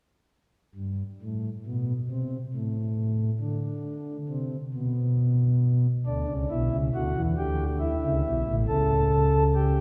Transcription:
0.75 G2
1.22 A2
1.66 B2
2.09 C3
2.54 A2
3.40 D3
4.29 C3
4.74 B2
6.06 D2 D3 D4
6.28 C#2 C#3
6.50 B1 B2 E4
6.70 C#2 C#3
6.94 D2 D3 F#4
7.15 E2 E3
7.37 D2 D3 G4
7.80 E4
8.03 C#2 C#3
8.25 B1 B2
8.46 A1 A2
8.68 C#2 C#3 A4
9.55 G4

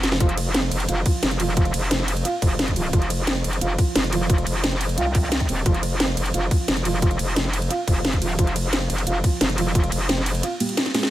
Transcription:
Already playing: F1
0.03 snare, closed hi-hat
0.12 snare
0.20 F1 F3, kick, closed hi-hat
0.29 closed hi-hat
0.38 closed hi-hat, ride
0.54 C4, snare, closed hi-hat
0.72 F1, closed hi-hat, ride
0.80 closed hi-hat
0.89 F1 F4, closed hi-hat
1.06 F3, kick, closed hi-hat, ride
1.23 F1, snare, closed hi-hat
1.31 closed hi-hat
1.40 F3, closed hi-hat, ride
1.57 F3, kick, closed hi-hat
1.65 closed hi-hat
1.74 F1, closed hi-hat, ride
1.91 C4, snare, closed hi-hat
2.00 snare
2.08 closed hi-hat, ride
2.17 closed hi-hat
2.25 F4, closed hi-hat
2.42 F1 F3, kick, closed hi-hat, ride
2.59 snare, closed hi-hat
2.68 kick, closed hi-hat
2.76 F3, closed hi-hat, ride
2.93 F1 F3, kick, closed hi-hat
3.02 closed hi-hat
3.10 closed hi-hat, ride
3.27 C4, snare, closed hi-hat
3.44 F1, closed hi-hat, ride
3.53 closed hi-hat
3.61 F1 F4, closed hi-hat
3.78 F3, kick, closed hi-hat, ride
3.96 F1, snare, closed hi-hat
4.04 closed hi-hat
4.13 F3, closed hi-hat, ride
4.30 F3, kick, closed hi-hat
4.38 closed hi-hat
4.47 F1, closed hi-hat, ride
4.64 C4, snare, closed hi-hat
4.72 snare
4.81 closed hi-hat, ride
4.89 closed hi-hat
4.98 C2 F4, closed hi-hat
5.15 F3, kick, closed hi-hat, ride
5.32 snare, closed hi-hat
5.40 kick, closed hi-hat
5.49 D#1 C4, closed hi-hat, ride
5.66 F1 F3, kick, closed hi-hat
5.74 closed hi-hat
5.83 closed hi-hat, ride
6.00 C4, snare, closed hi-hat
6.17 F1, closed hi-hat, ride
6.26 closed hi-hat
6.34 F1 F4, closed hi-hat
6.51 F3, kick, closed hi-hat, ride
6.68 F1, snare, closed hi-hat
6.77 closed hi-hat
6.85 F3, closed hi-hat, ride
7.02 F3, kick, closed hi-hat
7.11 closed hi-hat
7.19 F1, closed hi-hat, ride
7.36 C4, snare, closed hi-hat
7.45 snare
7.53 closed hi-hat, ride
7.62 closed hi-hat
7.70 F4, closed hi-hat
7.88 F1 F3, kick, closed hi-hat, ride
8.05 snare, closed hi-hat
8.13 kick, closed hi-hat
8.22 F3, closed hi-hat, ride
8.39 F1 F3, kick, closed hi-hat
8.47 closed hi-hat
8.56 closed hi-hat, ride
8.73 C4, snare, closed hi-hat
8.90 F1, closed hi-hat, ride
8.98 closed hi-hat
9.07 F1 F4, closed hi-hat
9.24 F3, kick, closed hi-hat, ride
9.41 F1, snare, closed hi-hat
9.49 closed hi-hat
9.58 F3, closed hi-hat, ride
9.75 F3, kick, closed hi-hat
9.84 closed hi-hat
9.92 F1, closed hi-hat, ride
10.09 C4, snare, closed hi-hat
10.18 snare
10.26 closed hi-hat, ride
10.35 closed hi-hat
10.43 F4, closed hi-hat
10.60 G3, closed hi-hat, ride
10.69 closed hi-hat
10.77 snare, closed hi-hat
10.86 snare, closed hi-hat
10.94 G#3, snare, closed hi-hat, ride
11.03 snare

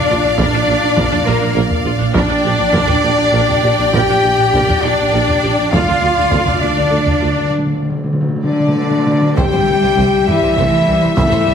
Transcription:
Already playing: D4 F4 D5 F5
0.09 A#1 F4
0.24 A#1 D4
0.36 A#1 D4 A#4 D5, taiko
0.53 A#1 D4
0.67 A#1 F4
0.82 A#1 D4
0.97 A#1 A#4, taiko
1.11 A#1 D4, taiko low
1.25 A#1 A#3 F4 A#4
1.41 A#1 D4
1.55 A#1 A#4
1.70 taiko low
1.84 A#1 F4
2.00 A#1 D4
2.13 A#1 D4 G4 A#4 D5 G5, taiko
2.17 D5
2.29 A#1 D4
2.44 A#1 G4
2.59 A#1 D4
2.72 A#1 A#4, taiko
2.88 A#1 D4, taiko low
3.03 A#1 G4
3.18 A#1 D4
3.32 A#1 A#4
3.49 taiko low
3.62 A#1 G4
3.77 A#1 D4
3.93 A#1 G4 A#4 G5, taiko
4.08 A#1 D4
4.23 A#1 G4
4.37 A#1 D4
4.53 A#1 A#4, taiko
4.68 A#1 D4, taiko low
4.82 A#1 D4 G4 D5
4.97 A#1 D4
5.12 A#1 A#4
5.28 taiko low
5.41 A#1 G4
5.57 A#1 D4
5.71 D2 D3 D4 F4 A4 D5 F5, taiko
5.80 D3
5.86 D2 D3 D4
5.94 D3
6.02 D2 D3 F4
6.07 D3
6.15 D2 D3 D4
6.24 D3
6.31 D2 D3 A4, taiko
6.45 D2 D3 D4, taiko low
6.53 D3
6.60 D2 D3 D4 F4 D5
6.68 D3
6.75 D2 D3 D4
6.83 D3
6.89 D2 D3 A4
7.05 D3, taiko low
7.13 D3
7.20 D2 D3 F4
7.28 D3
7.35 D2 D3 D4
7.43 D3
7.50 D3
7.58 D3
7.66 D3
7.73 D3
7.82 D3
7.90 D3
7.97 D3
8.04 D3
8.13 D3
8.21 D3
8.28 D3
8.36 D3
8.44 D3 D4 D5
8.51 D3
8.60 D3
8.68 D3
8.76 D3
8.82 D3
8.90 D3
8.98 D3
9.06 D3
9.13 D3
9.22 D3
9.36 C2 G3 G4 C5 E5 G5, taiko
9.52 C2 C5, taiko low-mid
9.66 C2 G4
9.82 C2 C5
9.96 C2 C5, taiko
10.27 E3 G3 E4 E5, taiko low-mid
10.42 C2 C5
10.56 C2 A3 C5, taiko
10.86 C2 G3 G4
11.00 C2 C5
11.15 C2 E3 A3 E4 C5 E5, taiko
11.31 C2 C5, taiko low-mid
11.46 C2 G3 G4

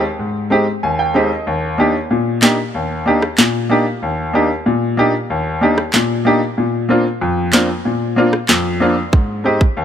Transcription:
0.19 G#2
0.50 G#3 C4 D#4 G4
0.83 D#2 G#5
0.99 G5
1.14 G#3 C4 D#4 G4 D#5
1.47 D#2
1.78 A#3 D4 D#4 G4
2.11 A#2
2.42 A#3 D4 D#4 G4, snare, clap
2.75 D#2
3.06 A#3 D4 D#4 G4
3.22 cross-stick
3.38 A#2, snare, clap
3.70 A#3 D4 D#4 G4
4.02 D#2
4.33 A#3 D4 D#4 G4
4.66 A#2
4.97 A#3 D4 D#4 G4
5.30 D#2
5.61 A#3 D4 D#4 G4
5.78 cross-stick
5.94 A#2, snare, clap
6.25 A#3 D4 D#4 G4
6.58 A#2
6.89 A#3 C4 D4 F4
7.21 F2
7.52 A#3 C4 D4 F4, snare, clap
7.85 A#2
8.16 A#3 C4 D4 F4
8.33 cross-stick
8.49 F2, snare, clap
8.80 A#3 C4 D4 F4
9.13 G#2, kick
9.44 G#3 C4 D#4 G4
9.61 kick
9.77 D#2

